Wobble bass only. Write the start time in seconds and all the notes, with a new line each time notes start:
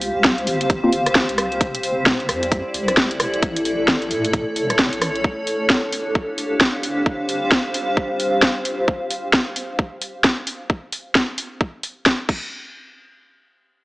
Already playing: C2
0.16 C2
0.47 G1
0.93 G1
1.29 C2
1.61 F1
1.97 F1
2.29 F2
2.74 C2
3.11 F1
3.43 A1
3.79 A1
4.11 A2
4.56 E1
4.93 A1